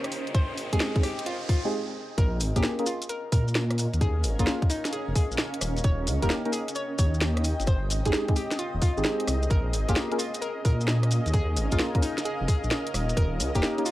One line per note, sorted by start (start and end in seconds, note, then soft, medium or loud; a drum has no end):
0.00 0.21 D#2 loud
0.00 0.35 C#4 medium
0.00 1.10 A#4 medium
0.00 1.72 C5 medium
0.00 1.72 D#5 medium
0.00 1.72 G5 medium
0.00 riser medium
0.04 cross-stick medium
0.04 closed hi-hat soft
0.12 open hi-hat medium
0.27 0.59 G1 medium
0.27 closed hi-hat soft
0.35 0.57 C5 loud
0.35 kick loud
0.35 closed hi-hat medium
0.57 0.69 G#1 medium
0.57 open hi-hat loud
0.73 0.78 G#1 medium
0.73 0.92 G#3 medium
0.73 0.92 C4 medium
0.73 0.92 D#4 medium
0.73 0.92 G4 medium
0.73 0.92 G#4 loud
0.73 0.95 G#4 medium
0.73 kick medium
0.73 closed hi-hat medium
0.80 snare loud
0.96 1.02 G#3 medium
0.96 1.02 C4 medium
0.96 1.02 D#4 medium
0.96 1.02 G4 medium
0.96 1.02 G#4 medium
0.96 kick loud
0.96 closed hi-hat soft
1.03 1.21 G4 medium
1.03 cross-stick medium
1.03 open hi-hat medium
1.19 closed hi-hat medium
1.26 1.44 F4 medium
1.26 closed hi-hat medium
1.49 1.72 F4 loud
1.49 kick loud
1.49 open hi-hat loud
1.65 1.72 G#3 medium
1.65 1.72 C4 medium
1.65 1.72 D#4 medium
1.65 1.72 G4 medium
1.65 1.72 G#4 loud
2.18 2.42 A#1 loud
2.18 7.68 C#4 medium
2.18 2.40 A#4 loud
2.18 13.91 D#5 medium
2.18 kick loud
2.18 closed hi-hat medium
2.18 maracas soft
2.34 8.42 A#4 medium
2.40 2.52 G#1 medium
2.40 open hi-hat loud
2.40 maracas medium
2.56 2.62 A#1 medium
2.56 2.75 A#3 medium
2.56 2.75 C#4 medium
2.56 2.75 F4 medium
2.56 2.78 G4 medium
2.56 2.75 G#4 medium
2.56 2.75 A#4 medium
2.56 kick medium
2.56 closed hi-hat medium
2.56 maracas soft
2.63 snare loud
2.63 maracas soft
2.79 2.85 A#3 medium
2.79 2.85 C#4 medium
2.79 2.85 F4 medium
2.79 2.85 G#4 medium
2.79 2.85 A#4 medium
2.79 closed hi-hat soft
2.86 3.04 F4 medium
2.86 open hi-hat medium
2.86 maracas medium
3.02 6.47 F5 medium
3.02 closed hi-hat medium
3.02 maracas medium
3.09 3.27 A#4 medium
3.09 closed hi-hat medium
3.09 maracas soft
3.23 5.62 G#5 medium
3.32 3.87 A#2 loud
3.32 3.55 A#4 loud
3.32 kick loud
3.32 open hi-hat loud
3.32 maracas medium
3.48 maracas soft
3.55 snare loud
3.55 maracas soft
3.71 cross-stick medium
3.71 closed hi-hat medium
3.78 open hi-hat medium
3.78 maracas medium
3.94 4.26 D#2 medium
3.94 closed hi-hat soft
3.94 maracas medium
4.01 4.24 G#4 loud
4.01 kick loud
4.01 closed hi-hat medium
4.01 maracas soft
4.24 4.35 G#1 medium
4.24 open hi-hat loud
4.24 maracas medium
4.39 4.45 A#1 medium
4.39 4.59 A#3 medium
4.39 4.59 C#4 medium
4.39 4.59 F4 medium
4.39 4.61 F4 medium
4.39 4.59 G#4 medium
4.39 4.59 A#4 loud
4.39 kick medium
4.39 closed hi-hat medium
4.39 maracas medium
4.47 snare loud
4.47 maracas soft
4.62 kick loud
4.62 closed hi-hat soft
4.70 4.87 D#4 medium
4.70 open hi-hat loud
4.70 maracas loud
4.85 snare medium
4.85 closed hi-hat medium
4.85 maracas medium
4.93 5.10 G#4 medium
4.93 closed hi-hat medium
4.93 maracas soft
5.08 5.14 F1 medium
5.15 5.38 G#4 loud
5.15 kick loud
5.15 open hi-hat loud
5.15 maracas medium
5.31 5.36 A#1 loud
5.31 maracas medium
5.38 snare loud
5.38 maracas soft
5.54 closed hi-hat medium
5.61 5.80 D#1 medium
5.61 cross-stick medium
5.61 open hi-hat medium
5.61 maracas medium
5.77 closed hi-hat soft
5.77 maracas medium
5.84 6.09 D#1 loud
5.84 6.07 C#5 loud
5.84 kick loud
5.84 closed hi-hat medium
5.84 maracas soft
6.01 10.37 D#5 medium
6.01 9.51 G5 medium
6.07 6.19 C#2 medium
6.07 open hi-hat loud
6.07 maracas loud
6.22 6.28 D#1 medium
6.22 6.42 A#3 medium
6.22 6.42 C#4 medium
6.22 6.42 D#4 medium
6.22 6.42 G4 medium
6.22 6.44 A#4 loud
6.22 6.42 A#4 loud
6.22 kick medium
6.22 closed hi-hat medium
6.22 maracas soft
6.30 snare loud
6.30 maracas soft
6.45 6.51 A#3 medium
6.45 6.51 C#4 medium
6.45 6.51 D#4 medium
6.45 6.51 G4 medium
6.45 6.51 A#4 medium
6.45 closed hi-hat soft
6.52 6.70 G#4 medium
6.52 open hi-hat medium
6.52 maracas loud
6.68 closed hi-hat medium
6.68 maracas medium
6.75 6.93 C#5 medium
6.75 closed hi-hat medium
6.75 maracas soft
6.99 7.53 D#2 loud
6.99 7.21 C#5 loud
6.99 kick loud
6.99 open hi-hat loud
6.99 maracas medium
7.14 maracas medium
7.21 snare loud
7.21 maracas soft
7.37 cross-stick medium
7.37 closed hi-hat soft
7.44 open hi-hat medium
7.44 maracas medium
7.60 7.92 G1 medium
7.60 closed hi-hat soft
7.60 maracas medium
7.67 9.51 C4 medium
7.67 7.90 C5 loud
7.67 kick loud
7.67 closed hi-hat medium
7.67 maracas soft
7.90 8.02 G#1 medium
7.90 open hi-hat loud
7.90 maracas loud
8.05 8.11 G#1 medium
8.05 8.25 G#3 medium
8.05 8.25 C4 medium
8.05 8.25 D#4 medium
8.05 8.25 G4 medium
8.05 8.28 G#4 medium
8.05 8.25 G#4 loud
8.05 10.60 G#4 medium
8.05 kick medium
8.05 closed hi-hat medium
8.05 maracas medium
8.13 snare loud
8.13 maracas soft
8.28 8.34 G#3 medium
8.28 8.34 C4 medium
8.28 8.34 D#4 medium
8.28 8.34 G4 medium
8.28 8.34 G#4 medium
8.28 kick loud
8.28 closed hi-hat soft
8.36 8.54 G4 medium
8.36 open hi-hat medium
8.36 maracas medium
8.51 snare medium
8.51 closed hi-hat medium
8.51 maracas medium
8.59 8.76 F4 medium
8.59 closed hi-hat medium
8.59 maracas soft
8.74 8.80 D#1 medium
8.82 9.04 F4 loud
8.82 kick loud
8.82 open hi-hat loud
8.82 maracas medium
8.97 9.03 G#1 medium
8.97 9.50 G#3 medium
8.97 9.50 C4 medium
8.97 9.50 D#4 medium
8.97 9.50 G4 medium
8.97 9.50 G#4 loud
8.97 maracas soft
9.03 snare loud
9.03 maracas soft
9.20 closed hi-hat medium
9.27 9.47 C2 medium
9.27 cross-stick medium
9.27 open hi-hat medium
9.27 maracas medium
9.43 closed hi-hat soft
9.43 maracas medium
9.50 9.75 A#1 loud
9.50 13.91 C#4 medium
9.50 9.73 A#4 loud
9.50 kick loud
9.50 closed hi-hat medium
9.50 maracas soft
9.73 9.85 G#1 medium
9.73 13.80 F5 medium
9.73 open hi-hat loud
9.73 maracas medium
9.87 9.94 A#1 medium
9.87 10.08 A#3 medium
9.87 10.08 C#4 medium
9.87 10.08 F4 medium
9.87 10.11 G4 medium
9.87 10.08 G#4 medium
9.87 13.91 A#4 medium
9.87 10.08 A#4 loud
9.87 kick medium
9.87 closed hi-hat medium
9.87 maracas medium
9.96 snare loud
9.96 maracas soft
10.12 10.18 A#3 medium
10.12 10.18 C#4 medium
10.12 10.18 F4 medium
10.12 10.18 G#4 medium
10.12 10.18 A#4 medium
10.12 closed hi-hat soft
10.19 10.37 F4 medium
10.19 open hi-hat medium
10.19 maracas loud
10.34 closed hi-hat medium
10.34 maracas medium
10.42 10.60 A#4 medium
10.42 closed hi-hat medium
10.42 maracas soft
10.61 11.20 A#2 loud
10.61 10.87 A#4 loud
10.61 12.94 G#5 medium
10.61 kick loud
10.61 open hi-hat loud
10.65 maracas medium
10.81 maracas medium
10.88 snare loud
10.88 maracas soft
11.03 cross-stick medium
11.03 closed hi-hat medium
11.11 open hi-hat medium
11.11 maracas medium
11.26 11.58 D#2 medium
11.26 closed hi-hat soft
11.26 maracas medium
11.33 11.56 G#4 loud
11.33 kick loud
11.33 closed hi-hat medium
11.33 maracas soft
11.56 11.68 G#1 medium
11.56 open hi-hat loud
11.56 maracas medium
11.72 11.78 A#1 medium
11.72 11.91 A#3 medium
11.72 11.91 C#4 medium
11.72 11.94 F4 loud
11.72 11.91 F4 medium
11.72 11.91 G#4 medium
11.72 11.91 A#4 loud
11.72 kick medium
11.72 closed hi-hat medium
11.72 maracas medium
11.79 snare loud
11.79 maracas soft
11.95 12.01 A#3 medium
11.95 12.01 C#4 medium
11.95 12.01 F4 medium
11.95 12.01 G#4 medium
11.95 12.01 A#4 medium
11.95 kick loud
11.95 closed hi-hat soft
12.02 12.20 D#4 medium
12.02 open hi-hat medium
12.02 maracas medium
12.18 snare medium
12.18 closed hi-hat medium
12.18 maracas medium
12.25 12.43 G#4 medium
12.25 closed hi-hat medium
12.25 maracas soft
12.41 12.46 F1 medium
12.48 12.71 G#4 loud
12.48 kick loud
12.48 open hi-hat loud
12.48 maracas medium
12.64 12.69 A#1 loud
12.64 maracas soft
12.71 snare loud
12.71 maracas soft
12.87 closed hi-hat medium
12.94 13.13 D#1 medium
12.94 cross-stick medium
12.94 open hi-hat medium
12.94 maracas medium
13.09 closed hi-hat soft
13.09 maracas soft
13.17 13.41 D#1 loud
13.17 13.39 A#4 loud
13.17 kick loud
13.17 closed hi-hat medium
13.17 maracas soft
13.40 13.51 C#2 medium
13.40 open hi-hat loud
13.40 maracas medium
13.55 13.61 D#1 medium
13.55 13.75 A#3 medium
13.55 13.75 C#4 medium
13.55 13.75 D#4 medium
13.55 13.75 G4 medium
13.55 13.77 G4 medium
13.55 13.75 A#4 loud
13.55 kick medium
13.55 closed hi-hat medium
13.55 maracas medium
13.63 snare loud
13.63 maracas soft
13.78 13.84 A#3 medium
13.78 13.84 C#4 medium
13.78 13.84 D#4 medium
13.78 13.84 G4 medium
13.78 13.84 A#4 medium
13.78 closed hi-hat soft
13.86 13.91 F4 medium
13.86 open hi-hat loud
13.86 maracas medium